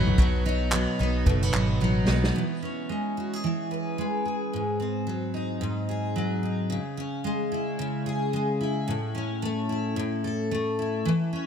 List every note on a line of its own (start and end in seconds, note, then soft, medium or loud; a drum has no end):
0.00 0.14 A1 medium
0.00 0.18 B2 medium
0.00 0.18 F#3 medium
0.00 0.72 F#3 medium
0.00 0.25 B3 medium
0.00 1.00 B3 medium
0.00 0.45 D#4 medium
0.00 0.99 D#4 medium
0.00 2.33 B4 medium
0.07 floor tom loud
0.18 0.85 B1 medium
0.18 1.25 B2 medium
0.18 0.44 F#3 medium
0.18 kick loud
0.46 1.52 F#3 medium
0.46 1.52 D#4 medium
0.72 1.80 F#3 medium
0.72 1.26 B3 medium
0.72 clap loud
0.99 1.22 B1 medium
0.99 2.08 B3 medium
0.99 1.79 D#4 medium
1.26 1.49 F#1 medium
1.26 2.42 B2 medium
1.26 1.43 A3 medium
1.26 kick loud
1.43 2.07 B3 medium
1.53 1.76 G#1 medium
1.53 2.41 F#3 medium
1.53 2.42 D#4 medium
1.53 clap medium
1.81 2.03 A1 medium
1.81 2.42 F#3 medium
1.81 2.41 D#4 medium
2.08 2.30 B1 medium
2.08 2.92 B3 medium
2.08 2.62 B3 medium
2.08 snare medium
2.24 snare medium
2.36 3.43 E3 medium
2.63 4.59 C#4 soft
2.89 3.98 G#3 medium
3.17 3.33 F#4 soft
3.33 4.24 G#4 soft
3.44 4.59 E3 medium
3.71 4.59 B4 medium
3.98 5.06 G#3 medium
4.25 5.10 G#4 soft
4.53 5.60 G#2 medium
4.80 6.77 C4 soft
5.07 6.15 F#3 medium
5.34 6.42 D#4 soft
5.61 6.76 G#2 medium
5.89 8.06 G#4 medium
6.16 6.77 F#3 medium
6.43 6.77 D#4 soft
6.70 7.78 C#3 medium
6.97 9.14 C#4 medium
7.24 8.32 G#3 medium
7.52 8.60 E4 medium
7.79 8.94 C#3 medium
8.06 8.94 G#4 medium
8.33 8.94 G#3 medium
8.61 9.69 E4 soft
8.88 9.95 A2 medium
9.15 11.32 C#4 medium
9.42 10.50 A3 medium
9.69 10.78 E4 soft
9.96 11.12 A2 medium
10.24 11.12 A4 medium
10.51 11.12 A3 medium
10.79 11.46 E4 soft
11.05 11.46 E3 medium
11.33 11.46 C#4 medium